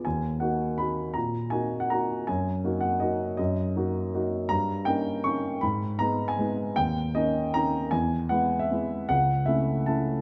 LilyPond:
\new Staff \with { instrumentName = "Grand piano" } { \time 3/4 \key ees \minor \tempo 4 = 158 << { aes''4 ges''4 ces'''4 | bes''4 aes''8. ges''16 bes''4 | aes''4. ges''8 ees''4 | ees''2~ ees''8 r8 |
\key dis \phrygian ais''4 g''4 cis'''4 | b''4 ais''8. gis''4~ gis''16 | g''4 dis''4 ais''4 | gis''4 fis''8. e''4~ e''16 |
fis''4 e''4 a''4 | } \\ { ees,4 <bes ees' ges'>4 <bes ees' ges'>4 | bes,4 <bes ees' ges'>4 <bes ees' ges'>4 | ges,4 <bes ees' ges'>4 <bes ees' ges'>4 | ges,4 <bes ees' ges'>4 <bes ees' ges'>4 |
g,4 <ais cis' dis'>4 <ais cis' dis'>4 | gis,4 <gis b dis'>4 <gis b dis'>4 | dis,4 <ais cis' dis'>4 <ais cis' dis'>4 | e,4 <gis b e'>4 <gis b e'>4 |
cis,4 <a cis' e'>4 <a cis' e'>4 | } >> }